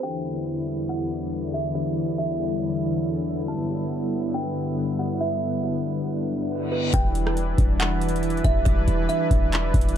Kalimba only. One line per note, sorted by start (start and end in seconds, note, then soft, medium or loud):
0.03 0.44 G5 loud
0.89 1.50 F#5 medium
1.54 1.74 E5 medium
1.75 2.16 D5 medium
2.18 3.01 E5 medium
3.48 3.89 A5 loud
4.34 4.95 G5 loud
4.99 5.20 F#5 medium
5.21 5.61 E5 loud
5.64 6.68 D5 medium
6.72 6.92 B4 medium
6.94 7.34 G5 loud
7.80 8.41 F#5 medium
8.44 8.65 E5 medium
8.65 9.06 D5 medium
9.09 9.91 E5 medium